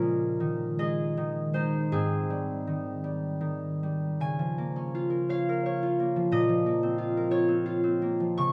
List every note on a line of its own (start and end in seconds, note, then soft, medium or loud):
0.00 1.93 A#2 medium
0.00 1.93 F3 soft
0.00 0.77 G#3 soft
0.00 1.94 C#4 medium
0.00 1.94 F4 medium
0.00 0.79 G#4 medium
0.00 3.55 A#4 medium
0.00 1.93 C#5 medium
0.00 1.56 F5 medium
0.40 1.16 D#3 soft
0.79 1.52 G#3 soft
0.79 1.91 G#4 soft
0.79 4.25 D#5 medium
1.17 1.94 D#3 soft
1.53 5.43 G#3 soft
1.53 4.27 D#4 soft
1.53 4.26 C5 medium
1.92 4.26 G#2 soft
1.92 4.27 C4 soft
1.92 5.82 G#4 medium
2.30 3.03 G3 soft
2.67 3.39 D#3 soft
3.04 3.82 G3 soft
3.41 4.25 D#3 soft
3.83 4.26 G3 soft
4.20 6.33 C#3 soft
4.20 6.33 G#5 medium
4.39 6.15 F3 soft
4.58 5.98 A#3 soft
4.76 8.52 C#4 soft
4.95 5.81 F4 soft
5.10 5.48 A#4 soft
5.29 5.64 C#5 soft
5.29 8.52 F5 medium
5.49 7.16 A#4 soft
5.66 7.30 C#5 soft
5.83 6.97 F4 soft
6.00 6.65 A#3 soft
6.16 6.48 F3 soft
6.32 8.41 A#2 medium
6.32 8.07 D#5 medium
6.49 8.19 F3 soft
6.66 8.01 A#3 soft
6.83 7.47 C4 soft
6.98 7.29 F4 soft
7.17 8.52 A#4 soft
7.31 7.64 F4 soft
7.31 8.52 C#5 medium
7.48 7.82 C4 soft
7.66 8.52 F4 soft
7.83 8.41 C4 soft
8.02 8.52 A#3 soft
8.20 8.52 F3 soft
8.37 8.52 C#3 medium
8.37 8.52 C#6 medium